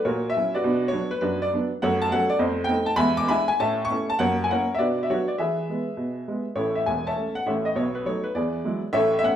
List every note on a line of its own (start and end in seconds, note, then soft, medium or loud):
0.05 0.29 A#2 medium
0.05 0.27 F#4 medium
0.05 0.27 A#4 medium
0.05 0.29 C#5 medium
0.30 0.53 E5 medium
0.36 0.52 F#3 soft
0.36 0.52 C#4 soft
0.36 0.52 E4 medium
0.55 0.86 F#4 medium
0.55 0.86 B4 medium
0.55 0.88 D5 medium
0.64 0.89 B2 medium
0.64 0.82 D4 medium
0.88 1.12 C#5 medium
0.93 1.09 F#3 soft
0.93 1.09 B3 soft
0.93 1.09 D4 medium
1.11 1.20 B4 loud
1.21 1.47 F#2 medium
1.21 1.40 D4 medium
1.21 1.40 F#4 medium
1.21 1.41 B4 medium
1.42 1.52 D5 medium
1.53 1.69 F#3 soft
1.53 1.69 B3 medium
1.53 1.70 D4 medium
1.82 2.07 F#2 medium
1.82 1.99 A3 medium
1.82 2.00 A4 medium
1.82 2.00 C#5 medium
1.82 2.01 F#5 loud
2.02 2.11 A5 loud
2.12 2.28 F#3 medium
2.12 2.29 A3 soft
2.12 2.29 C#4 medium
2.12 2.31 A4 medium
2.12 2.30 C#5 medium
2.12 2.31 F#5 loud
2.30 2.40 D5 medium
2.39 2.65 F2 medium
2.39 2.57 A3 soft
2.39 2.63 A4 medium
2.39 2.63 C5 medium
2.39 2.64 D#5 medium
2.64 2.85 A3 medium
2.64 2.89 G5 medium
2.68 2.85 C4 soft
2.68 2.86 D#4 medium
2.86 2.98 A5 medium
2.96 3.23 E2 loud
2.96 3.15 G#3 medium
2.96 3.17 E5 medium
2.96 3.17 G#5 medium
2.96 3.17 B5 loud
3.17 3.29 D6 loud
3.28 3.45 G#3 medium
3.28 3.46 D4 medium
3.28 3.46 E4 medium
3.28 3.48 E5 medium
3.28 3.47 G#5 medium
3.28 3.48 B5 loud
3.48 3.59 G#5 loud
3.60 3.85 A2 medium
3.60 3.77 C#4 soft
3.60 3.82 C#5 medium
3.60 3.83 E5 medium
3.60 3.84 A5 loud
3.85 4.09 C#6 loud
3.90 4.06 A3 soft
3.90 4.06 C#4 medium
3.90 4.06 E4 medium
4.10 4.19 A5 loud
4.19 4.44 F#2 medium
4.19 4.37 A#3 medium
4.19 4.42 A#4 medium
4.19 4.42 C#5 medium
4.19 4.43 F#5 loud
4.44 4.49 G#5 medium
4.51 4.66 A#3 soft
4.51 4.67 C#4 soft
4.51 4.67 E4 medium
4.51 4.73 A#4 medium
4.51 4.73 C#5 medium
4.51 4.74 F#5 medium
4.74 4.79 E5 medium
4.79 5.04 B2 medium
4.79 4.96 D4 soft
4.79 5.01 F#4 medium
4.79 5.02 B4 medium
4.79 5.03 D5 medium
5.03 5.08 E5 medium
5.09 5.25 F#3 soft
5.09 5.25 B3 soft
5.09 5.26 D4 soft
5.09 5.27 F#4 medium
5.09 5.28 C#5 medium
5.28 5.38 D5 medium
5.38 5.63 E3 medium
5.38 6.43 G#4 medium
5.38 6.43 B4 medium
5.38 6.46 E5 medium
5.69 5.85 G#3 soft
5.69 5.84 B3 soft
5.97 6.22 B2 medium
6.28 6.44 G#3 soft
6.28 6.44 B3 soft
6.55 6.79 A1 medium
6.55 6.79 A2 medium
6.55 6.74 E4 medium
6.55 6.74 A4 medium
6.55 6.75 C#5 medium
6.75 6.86 E5 medium
6.86 7.10 E1 medium
6.86 7.10 E2 medium
6.86 7.05 G#5 medium
7.07 7.34 C#5 medium
7.07 7.34 E5 medium
7.07 7.35 A5 medium
7.16 7.32 A3 soft
7.16 7.32 C#4 soft
7.35 7.45 F#5 medium
7.46 7.70 A1 medium
7.46 7.69 A2 medium
7.46 7.65 A4 soft
7.46 7.64 C#5 soft
7.46 7.65 E5 medium
7.65 7.75 D#5 medium
7.75 8.01 B1 medium
7.75 8.00 B2 medium
7.75 7.95 C#5 medium
7.95 8.05 B4 medium
8.05 8.21 F#3 soft
8.05 8.21 A3 soft
8.05 8.23 D#4 medium
8.05 8.25 C#5 medium
8.24 8.34 B4 medium
8.35 8.59 E2 medium
8.35 8.60 E3 medium
8.35 8.81 G#4 soft
8.35 8.81 B4 soft
8.35 8.83 D5 medium
8.65 8.81 F#3 soft
8.65 8.81 G#3 medium
8.65 8.81 E4 medium
8.93 9.18 A1 medium
8.93 9.18 A2 medium
8.93 9.17 A4 medium
8.93 9.16 C#5 medium
8.93 9.17 E5 loud
9.19 9.23 E5 loud
9.23 9.36 A3 soft
9.23 9.36 C#4 medium
9.23 9.36 F#5 loud